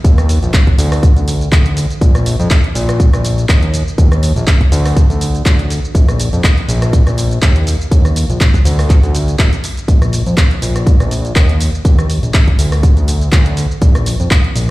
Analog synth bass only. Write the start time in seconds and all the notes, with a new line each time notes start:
0.05 D#2
0.43 A#1
0.78 D2
1.16 D2
1.52 D2
2.01 A#1
2.40 F2
2.75 A#1
3.13 A#1
3.49 D#2
3.98 D#2
4.36 A#1
4.72 D2
5.10 D2
5.46 D2
5.95 A#1
6.33 F2
6.68 A#1
7.07 A#1
7.42 D#2
7.91 D#2
8.29 A#1
8.65 D2
9.03 D2
9.39 D1
9.88 A#1
10.27 F2
10.62 A#1
11.00 A#1
11.36 D#2
11.85 D#2
12.23 A#1
12.59 D2
12.97 D2
13.32 D2
13.82 A#1
14.20 F2
14.55 A#1